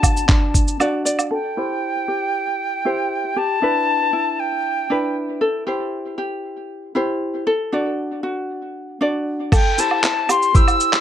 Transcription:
0.00 0.27 D4 medium
0.00 0.79 F#4 medium
0.00 1.31 A4 medium
0.00 0.77 A5 loud
0.00 kick medium
0.00 cabasa medium
0.00 low woodblock medium
0.17 cabasa soft
0.28 0.78 D4 medium
0.28 kick loud
0.28 clap medium
0.28 cabasa soft
0.54 kick medium
0.54 cabasa medium
0.68 cabasa soft
0.80 1.36 D4 medium
0.80 1.37 F#4 medium
0.80 1.04 D5 medium
0.80 cabasa soft
0.80 low woodblock medium
1.05 1.30 D5 medium
1.05 cabasa medium
1.19 cabasa soft
1.19 low woodblock medium
1.31 2.86 A4 medium
1.31 3.39 G5 medium
1.57 2.85 E4 soft
1.57 2.08 G4 soft
1.57 2.85 C5 medium
2.08 2.85 G4 medium
2.85 3.36 E4 medium
2.85 3.36 G4 soft
2.85 3.42 C5 medium
3.36 3.62 G4 medium
3.36 4.41 A5 loud
3.62 4.89 D4 soft
3.62 4.12 E4 soft
3.62 4.90 B4 medium
4.13 4.90 E4 medium
4.39 5.16 G5 medium
4.90 5.47 D4 medium
4.90 5.67 E4 soft
4.90 5.47 B4 medium
5.41 5.66 A4 medium
5.67 6.94 E4 soft
5.67 6.17 G4 medium
5.67 6.95 C5 medium
6.18 6.94 G4 medium
6.95 7.52 E4 medium
6.95 7.46 G4 medium
6.95 7.52 C5 medium
7.47 9.52 A4 medium
7.72 8.99 D4 medium
7.72 8.22 F#4 medium
7.72 9.01 D5 medium
8.23 9.00 F#4 medium
9.01 9.57 D4 medium
9.01 9.57 F#4 medium
9.01 9.52 D5 medium
9.52 11.01 A4 medium
9.52 9.81 G5 loud
9.52 kick loud
9.52 crash loud
9.52 cabasa soft
9.52 low woodblock medium
9.78 10.03 E4 medium
9.78 10.03 G4 medium
9.78 10.54 C5 medium
9.78 10.31 A5 loud
9.78 cabasa medium
9.91 low woodblock medium
10.03 10.29 E4 medium
10.03 clap medium
10.03 cabasa soft
10.29 10.55 G4 medium
10.29 10.57 C6 loud
10.29 cabasa medium
10.29 low woodblock medium
10.42 cabasa soft
10.55 11.01 E4 medium
10.55 11.01 G4 medium
10.55 11.01 C5 medium
10.55 11.01 E6 loud
10.55 kick loud
10.55 cabasa soft
10.68 cabasa soft
10.68 low woodblock medium
10.80 cabasa medium
10.93 clap medium
10.93 cabasa soft

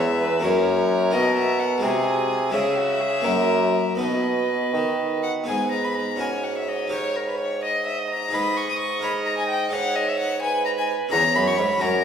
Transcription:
0.00 0.40 E2 medium
0.00 0.40 G#3 medium
0.00 0.39 C#4 medium
0.00 0.41 G#4 medium
0.00 0.46 E5 medium
0.20 0.43 B4 medium
0.40 1.09 F#2 medium
0.40 1.09 A#3 medium
0.40 1.10 C#4 medium
0.40 1.11 F#4 medium
0.40 1.85 A#4 medium
0.44 1.15 F#2 medium
0.44 1.12 C#5 medium
1.10 1.79 B2 medium
1.10 1.85 B2 medium
1.10 1.78 D#4 medium
1.10 1.80 F#4 medium
1.10 1.36 D#5 medium
1.37 1.61 E5 medium
1.60 1.82 F#5 medium
1.78 2.48 G#3 medium
1.78 2.49 D#4 medium
1.78 2.50 F#4 medium
1.82 2.49 C3 medium
1.82 2.53 C3 medium
1.82 2.54 G#4 medium
1.82 2.54 G#5 medium
2.50 3.21 G#3 medium
2.50 3.21 C#4 medium
2.50 3.22 E4 medium
2.50 3.98 E5 medium
2.54 3.26 C#3 medium
2.54 3.21 C#3 medium
2.54 2.79 G#4 medium
2.77 3.02 F#4 medium
3.01 3.25 G#4 medium
3.21 3.81 F#2 medium
3.21 3.94 A#3 medium
3.21 3.95 C#4 medium
3.21 3.96 F#4 medium
3.21 3.98 A#4 medium
3.25 3.95 F#2 medium
3.95 4.72 B2 medium
3.95 5.42 B3 medium
3.95 5.43 D#4 medium
3.95 5.44 F#4 medium
3.95 5.25 B4 medium
3.95 5.21 D#5 medium
4.00 4.71 B2 medium
4.73 5.46 D#3 medium
4.73 5.44 D#3 medium
5.23 5.31 F#5 medium
5.44 8.29 G#2 medium
5.44 6.16 B3 soft
5.44 6.16 D#4 soft
5.44 6.17 G#4 soft
5.44 5.71 G#5 medium
5.48 8.29 G#2 soft
5.48 6.16 B4 medium
5.72 5.86 A#5 medium
5.84 5.97 B5 medium
5.95 6.22 A#5 medium
6.16 6.87 C#4 soft
6.16 6.88 F#4 soft
6.16 6.89 A#4 soft
6.20 7.64 C#5 medium
6.20 6.45 G#5 medium
6.44 6.56 F#5 medium
6.58 6.70 E5 medium
6.68 6.92 D#5 medium
6.88 8.27 D#4 soft
6.88 8.28 G4 soft
6.88 8.28 A#4 soft
6.92 7.18 C#5 medium
7.16 7.28 A#4 medium
7.29 7.40 B4 medium
7.40 7.63 C#5 medium
7.63 8.32 D#5 medium
7.63 7.86 D#5 medium
7.86 8.00 E5 medium
7.99 8.09 D#5 medium
8.10 8.35 A#5 medium
8.29 10.95 G#2 medium
8.29 8.98 D#4 soft
8.29 8.99 G#4 soft
8.29 9.00 B4 soft
8.29 9.74 D#5 medium
8.33 11.09 G#2 medium
8.33 8.58 B5 medium
8.57 8.68 C#6 medium
8.69 8.78 D#6 medium
8.79 9.02 C#6 medium
8.99 9.68 D#4 soft
8.99 9.70 A#4 soft
8.99 9.70 C#5 soft
9.04 9.12 B5 medium
9.26 9.37 A#5 medium
9.38 9.48 G#5 medium
9.49 9.71 G5 medium
9.69 11.07 D#4 soft
9.69 11.08 G#4 soft
9.69 11.08 B4 soft
9.69 9.97 F#5 medium
9.73 10.42 C#5 medium
9.96 10.10 D#5 medium
10.09 10.19 E5 medium
10.19 10.42 F#5 medium
10.42 11.14 B4 medium
10.42 10.65 G#5 medium
10.65 10.70 A#5 medium
10.79 10.90 G#5 medium
11.09 11.23 E2 medium
11.09 11.77 C#4 medium
11.09 11.79 G#4 soft
11.09 11.80 C#5 soft
11.09 11.37 A#5 loud
11.13 11.34 E2 medium
11.13 11.83 C#5 medium
11.35 11.58 F#2 medium
11.35 11.57 F#2 medium
11.35 11.49 B5 medium
11.48 11.59 C#6 medium
11.57 11.69 G#2 medium
11.57 11.80 G#2 medium
11.57 11.82 B5 medium
11.78 12.04 F#2 medium
11.78 12.03 C#4 medium
11.78 12.04 F#4 medium
11.78 12.04 A#4 medium
11.78 12.04 C#5 soft
11.78 12.04 A#5 medium
11.82 12.03 F#2 medium

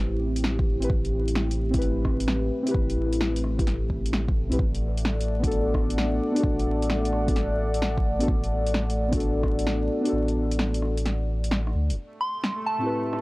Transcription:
0.00 0.89 A1 medium
0.00 11.94 A3 medium
0.00 4.55 C4 medium
0.00 4.56 E4 medium
0.00 4.56 G4 medium
0.36 closed hi-hat medium
0.44 snare loud
0.59 kick loud
0.80 0.88 C4 medium
0.80 0.89 E4 medium
0.80 0.90 G4 medium
0.80 closed hi-hat medium
0.84 0.90 B4 loud
0.90 2.50 A1 loud
0.90 kick loud
1.05 closed hi-hat soft
1.28 closed hi-hat medium
1.35 snare loud
1.51 closed hi-hat soft
1.70 2.61 C4 medium
1.70 2.62 E4 medium
1.70 kick loud
1.70 closed hi-hat medium
1.76 2.64 G4 medium
1.76 2.65 B4 loud
1.82 closed hi-hat soft
2.05 kick medium
2.05 cross-stick medium
2.20 closed hi-hat medium
2.28 snare loud
2.63 3.53 C4 medium
2.63 3.55 E4 medium
2.63 closed hi-hat medium
2.68 3.56 G4 medium
2.68 3.57 B4 loud
2.74 2.96 A1 loud
2.74 kick loud
2.90 closed hi-hat soft
2.98 4.51 A1 medium
3.13 closed hi-hat medium
3.21 snare loud
3.36 closed hi-hat soft
3.44 cross-stick soft
3.57 3.62 C4 medium
3.57 3.63 E4 medium
3.57 3.64 G4 medium
3.57 kick loud
3.57 closed hi-hat medium
3.61 3.64 B4 medium
3.67 snare medium
3.67 closed hi-hat soft
3.90 kick medium
4.06 closed hi-hat medium
4.13 snare loud
4.28 kick loud
4.49 4.59 B1 loud
4.49 4.57 C4 medium
4.49 4.58 E4 medium
4.49 4.58 G4 medium
4.49 4.59 B4 loud
4.49 closed hi-hat soft
4.59 6.20 A1 medium
4.59 11.94 A4 medium
4.59 11.94 D5 medium
4.59 11.94 F#5 medium
4.59 kick loud
4.75 closed hi-hat soft
4.98 closed hi-hat soft
5.05 snare loud
5.21 closed hi-hat soft
5.39 6.30 B3 medium
5.39 6.31 D4 medium
5.44 6.33 F#4 medium
5.44 6.34 A4 loud
5.44 kick medium
5.44 closed hi-hat medium
5.51 closed hi-hat soft
5.74 kick medium
5.74 cross-stick medium
5.90 closed hi-hat medium
5.98 snare loud
6.32 7.22 B3 medium
6.32 7.24 D4 medium
6.36 7.25 F#4 medium
6.36 7.27 A4 loud
6.36 closed hi-hat soft
6.43 6.65 A1 loud
6.43 kick loud
6.59 closed hi-hat soft
6.67 8.27 A1 medium
6.82 closed hi-hat medium
6.90 snare loud
7.05 closed hi-hat soft
7.13 cross-stick soft
7.26 7.32 B3 medium
7.26 7.33 D4 medium
7.26 7.33 F#4 medium
7.26 7.34 A4 medium
7.26 kick medium
7.26 closed hi-hat medium
7.36 snare medium
7.36 closed hi-hat soft
7.74 closed hi-hat medium
7.82 snare loud
7.97 kick loud
8.19 8.27 B3 medium
8.19 8.28 D4 medium
8.19 8.28 F#4 medium
8.19 8.29 A4 loud
8.19 closed hi-hat medium
8.28 9.89 A1 loud
8.28 kick loud
8.44 closed hi-hat soft
8.67 closed hi-hat medium
8.74 snare loud
8.90 closed hi-hat soft
9.09 9.99 B3 medium
9.09 10.01 D4 medium
9.13 10.02 F#4 medium
9.13 10.03 A4 loud
9.13 kick medium
9.13 closed hi-hat medium
9.20 closed hi-hat soft
9.43 kick medium
9.43 cross-stick medium
9.59 closed hi-hat medium
9.67 snare medium
10.01 10.92 B3 medium
10.01 10.93 D4 medium
10.05 10.94 F#4 medium
10.05 10.96 A4 loud
10.05 closed hi-hat medium
10.12 10.34 A1 loud
10.28 closed hi-hat soft
10.36 11.74 A1 medium
10.51 closed hi-hat medium
10.59 snare loud
10.74 closed hi-hat soft
10.82 cross-stick soft
10.97 closed hi-hat medium
11.06 snare medium
11.06 closed hi-hat soft
11.44 closed hi-hat medium
11.51 snare medium
11.67 cross-stick soft
11.75 11.92 D2 medium
11.90 11.97 E1 medium
11.90 closed hi-hat medium
11.97 13.21 A3 medium
11.97 13.21 C4 medium
11.97 13.21 A4 medium
11.97 13.21 G5 medium
12.21 12.45 C6 medium
12.44 snare medium
12.66 13.05 A5 medium
12.78 13.21 A2 medium
12.78 13.21 C4 medium
12.78 13.21 E4 medium
12.84 13.21 G4 medium
12.84 13.21 B4 medium
13.13 cross-stick medium

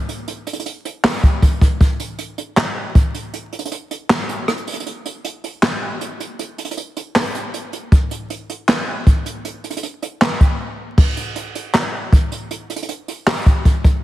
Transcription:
0.09 closed hi-hat medium
0.28 closed hi-hat medium
0.47 closed hi-hat medium
0.53 closed hi-hat medium
0.60 closed hi-hat medium
0.66 closed hi-hat medium
0.85 closed hi-hat medium
1.04 snare loud
1.04 clap medium
1.09 closed hi-hat medium
1.14 closed hi-hat medium
1.18 closed hi-hat soft
1.23 kick medium
1.23 closed hi-hat medium
1.42 kick medium
1.42 closed hi-hat medium
1.61 kick loud
1.61 closed hi-hat medium
1.81 kick loud
1.81 closed hi-hat medium
2.00 closed hi-hat medium
2.19 closed hi-hat medium
2.38 closed hi-hat medium
2.57 snare loud
2.57 clap loud
2.95 kick medium
2.95 closed hi-hat medium
3.14 closed hi-hat medium
3.33 closed hi-hat medium
3.53 closed hi-hat medium
3.59 closed hi-hat medium
3.65 closed hi-hat medium
3.72 closed hi-hat medium
3.91 closed hi-hat medium
4.10 snare loud
4.10 clap loud
4.29 closed hi-hat medium
4.48 cross-stick loud
4.48 closed hi-hat medium
4.58 closed hi-hat soft
4.67 closed hi-hat medium
4.67 open hi-hat medium
4.74 closed hi-hat medium
4.80 closed hi-hat medium
4.86 closed hi-hat medium
5.05 closed hi-hat medium
5.24 closed hi-hat medium
5.44 closed hi-hat medium
5.63 snare loud
5.63 clap medium
6.01 closed hi-hat medium
6.20 closed hi-hat medium
6.39 closed hi-hat medium
6.58 closed hi-hat medium
6.65 closed hi-hat medium
6.71 closed hi-hat medium
6.77 closed hi-hat medium
6.97 closed hi-hat medium
7.16 snare loud
7.16 clap medium
7.20 closed hi-hat medium
7.25 closed hi-hat medium
7.30 closed hi-hat soft
7.35 closed hi-hat medium
7.54 closed hi-hat medium
7.73 closed hi-hat medium
7.92 kick loud
7.92 closed hi-hat medium
8.11 closed hi-hat medium
8.30 closed hi-hat medium
8.50 closed hi-hat medium
8.68 snare loud
8.68 clap medium
9.07 kick medium
9.07 closed hi-hat medium
9.26 closed hi-hat medium
9.45 closed hi-hat medium
9.64 closed hi-hat soft
9.70 closed hi-hat medium
9.77 closed hi-hat medium
9.83 closed hi-hat medium
10.02 closed hi-hat medium
10.21 snare loud
10.21 clap medium
10.40 kick medium
10.40 closed hi-hat medium
10.98 kick loud
10.98 crash loud
11.17 closed hi-hat medium
11.36 closed hi-hat medium
11.55 closed hi-hat medium
11.74 snare loud
11.74 clap loud
12.12 kick medium
12.12 closed hi-hat medium
12.32 closed hi-hat medium
12.51 closed hi-hat medium
12.70 closed hi-hat medium
12.76 closed hi-hat medium
12.83 closed hi-hat medium
12.89 closed hi-hat medium
13.08 closed hi-hat medium
13.27 snare loud
13.27 clap loud
13.32 closed hi-hat medium
13.37 closed hi-hat medium
13.41 closed hi-hat soft
13.46 kick medium
13.46 closed hi-hat medium
13.65 kick medium
13.65 closed hi-hat medium
13.84 kick loud
13.84 closed hi-hat medium

